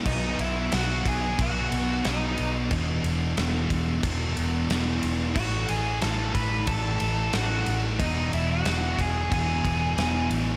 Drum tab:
CC |x-------|--------|x-------|--------|
RD |-xxxxxxx|xxxxxxxx|-xxxxxxx|xxxxxxxx|
SD |--o---o-|--o---o-|--o---o-|--o---o-|
BD |o--oo---|o--oo---|o--oo---|o--ooo--|